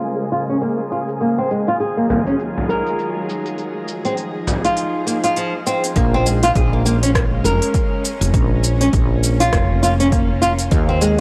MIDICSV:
0, 0, Header, 1, 7, 480
1, 0, Start_track
1, 0, Key_signature, -5, "minor"
1, 0, Tempo, 594059
1, 977, Time_signature, 4, 2, 24, 8
1, 9050, End_track
2, 0, Start_track
2, 0, Title_t, "Synth texture"
2, 0, Program_c, 0, 99
2, 0, Note_on_c, 0, 56, 82
2, 0, Note_on_c, 0, 68, 79
2, 4826, Note_off_c, 0, 68, 0
2, 4828, Note_off_c, 0, 56, 0
2, 9050, End_track
3, 0, Start_track
3, 0, Title_t, "Nylon-string guitar"
3, 0, Program_c, 1, 24
3, 0, Note_on_c, 1, 65, 67
3, 248, Note_off_c, 1, 65, 0
3, 258, Note_on_c, 1, 65, 65
3, 337, Note_off_c, 1, 65, 0
3, 400, Note_on_c, 1, 61, 64
3, 456, Note_off_c, 1, 61, 0
3, 498, Note_on_c, 1, 58, 71
3, 631, Note_off_c, 1, 58, 0
3, 741, Note_on_c, 1, 65, 65
3, 819, Note_off_c, 1, 65, 0
3, 979, Note_on_c, 1, 58, 72
3, 1111, Note_off_c, 1, 58, 0
3, 1118, Note_on_c, 1, 60, 88
3, 1208, Note_off_c, 1, 60, 0
3, 1220, Note_on_c, 1, 56, 66
3, 1352, Note_off_c, 1, 56, 0
3, 1358, Note_on_c, 1, 65, 83
3, 1415, Note_off_c, 1, 65, 0
3, 1456, Note_on_c, 1, 68, 73
3, 1590, Note_off_c, 1, 68, 0
3, 1595, Note_on_c, 1, 58, 66
3, 1687, Note_off_c, 1, 58, 0
3, 1697, Note_on_c, 1, 58, 72
3, 1777, Note_off_c, 1, 58, 0
3, 1834, Note_on_c, 1, 61, 69
3, 1892, Note_off_c, 1, 61, 0
3, 2174, Note_on_c, 1, 70, 71
3, 2646, Note_off_c, 1, 70, 0
3, 3274, Note_on_c, 1, 60, 66
3, 3333, Note_off_c, 1, 60, 0
3, 3755, Note_on_c, 1, 65, 73
3, 4086, Note_off_c, 1, 65, 0
3, 4094, Note_on_c, 1, 58, 73
3, 4175, Note_off_c, 1, 58, 0
3, 4234, Note_on_c, 1, 65, 68
3, 4331, Note_off_c, 1, 65, 0
3, 4337, Note_on_c, 1, 53, 86
3, 4463, Note_off_c, 1, 53, 0
3, 4578, Note_on_c, 1, 60, 91
3, 4711, Note_off_c, 1, 60, 0
3, 4820, Note_on_c, 1, 58, 84
3, 4952, Note_off_c, 1, 58, 0
3, 4963, Note_on_c, 1, 60, 99
3, 5050, Note_off_c, 1, 60, 0
3, 5060, Note_on_c, 1, 56, 73
3, 5192, Note_off_c, 1, 56, 0
3, 5199, Note_on_c, 1, 65, 89
3, 5255, Note_off_c, 1, 65, 0
3, 5298, Note_on_c, 1, 68, 82
3, 5431, Note_off_c, 1, 68, 0
3, 5439, Note_on_c, 1, 58, 76
3, 5531, Note_off_c, 1, 58, 0
3, 5540, Note_on_c, 1, 58, 77
3, 5619, Note_off_c, 1, 58, 0
3, 5679, Note_on_c, 1, 61, 77
3, 5735, Note_off_c, 1, 61, 0
3, 6020, Note_on_c, 1, 70, 80
3, 6488, Note_off_c, 1, 70, 0
3, 7118, Note_on_c, 1, 61, 66
3, 7175, Note_off_c, 1, 61, 0
3, 7597, Note_on_c, 1, 65, 80
3, 7927, Note_off_c, 1, 65, 0
3, 7940, Note_on_c, 1, 65, 72
3, 8019, Note_off_c, 1, 65, 0
3, 8080, Note_on_c, 1, 61, 74
3, 8136, Note_off_c, 1, 61, 0
3, 8178, Note_on_c, 1, 58, 75
3, 8311, Note_off_c, 1, 58, 0
3, 8416, Note_on_c, 1, 65, 78
3, 8497, Note_off_c, 1, 65, 0
3, 8658, Note_on_c, 1, 58, 82
3, 8791, Note_off_c, 1, 58, 0
3, 8797, Note_on_c, 1, 60, 100
3, 8887, Note_off_c, 1, 60, 0
3, 8898, Note_on_c, 1, 56, 79
3, 9031, Note_off_c, 1, 56, 0
3, 9050, End_track
4, 0, Start_track
4, 0, Title_t, "Synth drone"
4, 0, Program_c, 2, 95
4, 0, Note_on_c, 2, 49, 70
4, 0, Note_on_c, 2, 58, 67
4, 0, Note_on_c, 2, 70, 81
4, 0, Note_on_c, 2, 72, 64
4, 941, Note_off_c, 2, 58, 0
4, 942, Note_off_c, 2, 49, 0
4, 943, Note_off_c, 2, 72, 0
4, 959, Note_off_c, 2, 70, 0
4, 975, Note_on_c, 2, 54, 66
4, 975, Note_on_c, 2, 65, 67
4, 978, Note_on_c, 2, 51, 75
4, 978, Note_on_c, 2, 68, 85
4, 2877, Note_off_c, 2, 54, 0
4, 2877, Note_off_c, 2, 65, 0
4, 2879, Note_off_c, 2, 51, 0
4, 2879, Note_off_c, 2, 68, 0
4, 2898, Note_on_c, 2, 63, 67
4, 2899, Note_on_c, 2, 53, 80
4, 2899, Note_on_c, 2, 68, 82
4, 4798, Note_off_c, 2, 63, 0
4, 4799, Note_off_c, 2, 53, 0
4, 4799, Note_off_c, 2, 68, 0
4, 4816, Note_on_c, 2, 56, 71
4, 4819, Note_on_c, 2, 61, 90
4, 6717, Note_off_c, 2, 56, 0
4, 6745, Note_on_c, 2, 58, 72
4, 8626, Note_off_c, 2, 61, 0
4, 8642, Note_off_c, 2, 58, 0
4, 8660, Note_on_c, 2, 54, 70
4, 8662, Note_on_c, 2, 49, 81
4, 8662, Note_on_c, 2, 56, 72
4, 8662, Note_on_c, 2, 65, 91
4, 9050, Note_off_c, 2, 49, 0
4, 9050, Note_off_c, 2, 54, 0
4, 9050, Note_off_c, 2, 56, 0
4, 9050, Note_off_c, 2, 65, 0
4, 9050, End_track
5, 0, Start_track
5, 0, Title_t, "Fretless electric bass"
5, 0, Program_c, 3, 35
5, 4817, Note_on_c, 3, 34, 93
5, 5270, Note_off_c, 3, 34, 0
5, 5297, Note_on_c, 3, 34, 88
5, 5990, Note_off_c, 3, 34, 0
5, 6013, Note_on_c, 3, 29, 85
5, 6132, Note_off_c, 3, 29, 0
5, 6633, Note_on_c, 3, 29, 87
5, 6718, Note_off_c, 3, 29, 0
5, 6737, Note_on_c, 3, 34, 100
5, 7190, Note_off_c, 3, 34, 0
5, 7218, Note_on_c, 3, 34, 89
5, 7670, Note_off_c, 3, 34, 0
5, 7700, Note_on_c, 3, 29, 90
5, 8631, Note_off_c, 3, 29, 0
5, 8659, Note_on_c, 3, 39, 101
5, 9050, Note_off_c, 3, 39, 0
5, 9050, End_track
6, 0, Start_track
6, 0, Title_t, "Frame drum"
6, 1697, Note_on_c, 9, 64, 88
6, 1778, Note_off_c, 9, 64, 0
6, 2081, Note_on_c, 9, 64, 72
6, 2162, Note_off_c, 9, 64, 0
6, 3614, Note_on_c, 9, 64, 89
6, 3695, Note_off_c, 9, 64, 0
6, 9050, End_track
7, 0, Start_track
7, 0, Title_t, "Drums"
7, 19, Note_on_c, 9, 46, 39
7, 24, Note_on_c, 9, 82, 30
7, 99, Note_off_c, 9, 46, 0
7, 105, Note_off_c, 9, 82, 0
7, 263, Note_on_c, 9, 82, 69
7, 343, Note_off_c, 9, 82, 0
7, 398, Note_on_c, 9, 46, 46
7, 403, Note_on_c, 9, 82, 39
7, 479, Note_off_c, 9, 46, 0
7, 484, Note_off_c, 9, 82, 0
7, 497, Note_on_c, 9, 46, 38
7, 502, Note_on_c, 9, 82, 31
7, 578, Note_off_c, 9, 46, 0
7, 583, Note_off_c, 9, 82, 0
7, 742, Note_on_c, 9, 82, 75
7, 823, Note_off_c, 9, 82, 0
7, 876, Note_on_c, 9, 46, 48
7, 882, Note_on_c, 9, 82, 40
7, 957, Note_off_c, 9, 46, 0
7, 963, Note_off_c, 9, 82, 0
7, 974, Note_on_c, 9, 46, 39
7, 980, Note_on_c, 9, 82, 30
7, 1055, Note_off_c, 9, 46, 0
7, 1061, Note_off_c, 9, 82, 0
7, 1218, Note_on_c, 9, 82, 71
7, 1299, Note_off_c, 9, 82, 0
7, 1352, Note_on_c, 9, 46, 46
7, 1357, Note_on_c, 9, 82, 41
7, 1433, Note_off_c, 9, 46, 0
7, 1438, Note_off_c, 9, 82, 0
7, 1454, Note_on_c, 9, 46, 38
7, 1459, Note_on_c, 9, 82, 30
7, 1534, Note_off_c, 9, 46, 0
7, 1540, Note_off_c, 9, 82, 0
7, 1698, Note_on_c, 9, 82, 77
7, 1779, Note_off_c, 9, 82, 0
7, 1832, Note_on_c, 9, 46, 51
7, 1837, Note_on_c, 9, 82, 43
7, 1912, Note_off_c, 9, 46, 0
7, 1918, Note_off_c, 9, 82, 0
7, 1936, Note_on_c, 9, 46, 40
7, 1941, Note_on_c, 9, 82, 33
7, 2017, Note_off_c, 9, 46, 0
7, 2022, Note_off_c, 9, 82, 0
7, 2180, Note_on_c, 9, 82, 70
7, 2261, Note_off_c, 9, 82, 0
7, 2316, Note_on_c, 9, 46, 47
7, 2322, Note_on_c, 9, 82, 41
7, 2397, Note_off_c, 9, 46, 0
7, 2403, Note_off_c, 9, 82, 0
7, 2416, Note_on_c, 9, 46, 39
7, 2422, Note_on_c, 9, 82, 31
7, 2497, Note_off_c, 9, 46, 0
7, 2503, Note_off_c, 9, 82, 0
7, 2662, Note_on_c, 9, 82, 79
7, 2743, Note_off_c, 9, 82, 0
7, 2794, Note_on_c, 9, 46, 47
7, 2799, Note_on_c, 9, 82, 39
7, 2875, Note_off_c, 9, 46, 0
7, 2880, Note_off_c, 9, 82, 0
7, 2893, Note_on_c, 9, 46, 37
7, 2899, Note_on_c, 9, 82, 29
7, 2974, Note_off_c, 9, 46, 0
7, 2980, Note_off_c, 9, 82, 0
7, 3136, Note_on_c, 9, 82, 74
7, 3217, Note_off_c, 9, 82, 0
7, 3271, Note_on_c, 9, 46, 45
7, 3277, Note_on_c, 9, 82, 42
7, 3352, Note_off_c, 9, 46, 0
7, 3357, Note_off_c, 9, 82, 0
7, 3372, Note_on_c, 9, 46, 37
7, 3377, Note_on_c, 9, 82, 31
7, 3452, Note_off_c, 9, 46, 0
7, 3458, Note_off_c, 9, 82, 0
7, 3618, Note_on_c, 9, 82, 72
7, 3698, Note_off_c, 9, 82, 0
7, 3754, Note_on_c, 9, 46, 52
7, 3759, Note_on_c, 9, 82, 44
7, 3835, Note_off_c, 9, 46, 0
7, 3840, Note_off_c, 9, 82, 0
7, 3852, Note_on_c, 9, 46, 40
7, 3858, Note_on_c, 9, 82, 32
7, 3933, Note_off_c, 9, 46, 0
7, 3939, Note_off_c, 9, 82, 0
7, 4100, Note_on_c, 9, 82, 72
7, 4181, Note_off_c, 9, 82, 0
7, 4231, Note_on_c, 9, 46, 50
7, 4237, Note_on_c, 9, 82, 42
7, 4312, Note_off_c, 9, 46, 0
7, 4318, Note_off_c, 9, 82, 0
7, 4334, Note_on_c, 9, 46, 38
7, 4340, Note_on_c, 9, 82, 31
7, 4415, Note_off_c, 9, 46, 0
7, 4421, Note_off_c, 9, 82, 0
7, 4579, Note_on_c, 9, 82, 77
7, 4660, Note_off_c, 9, 82, 0
7, 4717, Note_on_c, 9, 46, 49
7, 4723, Note_on_c, 9, 82, 42
7, 4798, Note_off_c, 9, 46, 0
7, 4804, Note_off_c, 9, 82, 0
7, 4814, Note_on_c, 9, 46, 44
7, 4816, Note_on_c, 9, 36, 96
7, 4820, Note_on_c, 9, 82, 30
7, 4895, Note_off_c, 9, 46, 0
7, 4896, Note_off_c, 9, 36, 0
7, 4900, Note_off_c, 9, 82, 0
7, 5060, Note_on_c, 9, 82, 73
7, 5141, Note_off_c, 9, 82, 0
7, 5194, Note_on_c, 9, 46, 57
7, 5199, Note_on_c, 9, 82, 44
7, 5275, Note_off_c, 9, 46, 0
7, 5280, Note_off_c, 9, 82, 0
7, 5296, Note_on_c, 9, 36, 95
7, 5297, Note_on_c, 9, 46, 44
7, 5302, Note_on_c, 9, 82, 31
7, 5377, Note_off_c, 9, 36, 0
7, 5377, Note_off_c, 9, 46, 0
7, 5383, Note_off_c, 9, 82, 0
7, 5543, Note_on_c, 9, 82, 74
7, 5624, Note_off_c, 9, 82, 0
7, 5680, Note_on_c, 9, 46, 62
7, 5685, Note_on_c, 9, 82, 45
7, 5760, Note_off_c, 9, 46, 0
7, 5766, Note_off_c, 9, 82, 0
7, 5777, Note_on_c, 9, 36, 104
7, 5780, Note_on_c, 9, 37, 80
7, 5780, Note_on_c, 9, 46, 45
7, 5786, Note_on_c, 9, 82, 32
7, 5858, Note_off_c, 9, 36, 0
7, 5861, Note_off_c, 9, 37, 0
7, 5861, Note_off_c, 9, 46, 0
7, 5866, Note_off_c, 9, 82, 0
7, 6021, Note_on_c, 9, 82, 76
7, 6102, Note_off_c, 9, 82, 0
7, 6158, Note_on_c, 9, 46, 57
7, 6163, Note_on_c, 9, 82, 42
7, 6239, Note_off_c, 9, 46, 0
7, 6244, Note_off_c, 9, 82, 0
7, 6255, Note_on_c, 9, 46, 47
7, 6257, Note_on_c, 9, 36, 102
7, 6261, Note_on_c, 9, 82, 34
7, 6336, Note_off_c, 9, 46, 0
7, 6338, Note_off_c, 9, 36, 0
7, 6342, Note_off_c, 9, 82, 0
7, 6503, Note_on_c, 9, 82, 83
7, 6584, Note_off_c, 9, 82, 0
7, 6638, Note_on_c, 9, 46, 58
7, 6643, Note_on_c, 9, 82, 45
7, 6719, Note_off_c, 9, 46, 0
7, 6724, Note_off_c, 9, 82, 0
7, 6737, Note_on_c, 9, 36, 105
7, 6737, Note_on_c, 9, 46, 44
7, 6743, Note_on_c, 9, 82, 33
7, 6818, Note_off_c, 9, 36, 0
7, 6818, Note_off_c, 9, 46, 0
7, 6824, Note_off_c, 9, 82, 0
7, 6979, Note_on_c, 9, 82, 81
7, 7060, Note_off_c, 9, 82, 0
7, 7117, Note_on_c, 9, 46, 58
7, 7123, Note_on_c, 9, 82, 46
7, 7198, Note_off_c, 9, 46, 0
7, 7203, Note_off_c, 9, 82, 0
7, 7216, Note_on_c, 9, 46, 44
7, 7217, Note_on_c, 9, 36, 96
7, 7222, Note_on_c, 9, 82, 32
7, 7297, Note_off_c, 9, 46, 0
7, 7298, Note_off_c, 9, 36, 0
7, 7302, Note_off_c, 9, 82, 0
7, 7461, Note_on_c, 9, 82, 82
7, 7542, Note_off_c, 9, 82, 0
7, 7596, Note_on_c, 9, 46, 62
7, 7602, Note_on_c, 9, 82, 47
7, 7677, Note_off_c, 9, 46, 0
7, 7683, Note_off_c, 9, 82, 0
7, 7697, Note_on_c, 9, 36, 113
7, 7697, Note_on_c, 9, 37, 77
7, 7697, Note_on_c, 9, 46, 46
7, 7703, Note_on_c, 9, 82, 35
7, 7778, Note_off_c, 9, 36, 0
7, 7778, Note_off_c, 9, 37, 0
7, 7778, Note_off_c, 9, 46, 0
7, 7783, Note_off_c, 9, 82, 0
7, 7945, Note_on_c, 9, 82, 77
7, 8025, Note_off_c, 9, 82, 0
7, 8080, Note_on_c, 9, 46, 53
7, 8086, Note_on_c, 9, 82, 46
7, 8161, Note_off_c, 9, 46, 0
7, 8167, Note_off_c, 9, 82, 0
7, 8177, Note_on_c, 9, 36, 108
7, 8178, Note_on_c, 9, 46, 44
7, 8184, Note_on_c, 9, 82, 37
7, 8258, Note_off_c, 9, 36, 0
7, 8259, Note_off_c, 9, 46, 0
7, 8265, Note_off_c, 9, 82, 0
7, 8422, Note_on_c, 9, 82, 84
7, 8503, Note_off_c, 9, 82, 0
7, 8553, Note_on_c, 9, 46, 58
7, 8559, Note_on_c, 9, 82, 48
7, 8634, Note_off_c, 9, 46, 0
7, 8640, Note_off_c, 9, 82, 0
7, 8655, Note_on_c, 9, 46, 42
7, 8658, Note_on_c, 9, 36, 103
7, 8661, Note_on_c, 9, 82, 35
7, 8736, Note_off_c, 9, 46, 0
7, 8739, Note_off_c, 9, 36, 0
7, 8742, Note_off_c, 9, 82, 0
7, 8901, Note_on_c, 9, 82, 80
7, 8981, Note_off_c, 9, 82, 0
7, 9050, End_track
0, 0, End_of_file